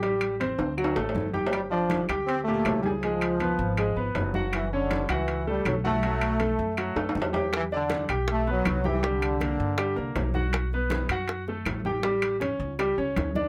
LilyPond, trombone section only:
\new Staff \with { instrumentName = "Trombone section" } { \clef bass \time 4/4 \key b \minor \tempo 4 = 160 r1 | g8 f4 r8 c'8 a4 g8 | eis2. r4 | e8 d4 e4 g8 fis8 a8~ |
a2. r4 | e8 d4 r8 a8 fis4 e8 | d2. r4 | r1 |
r1 | }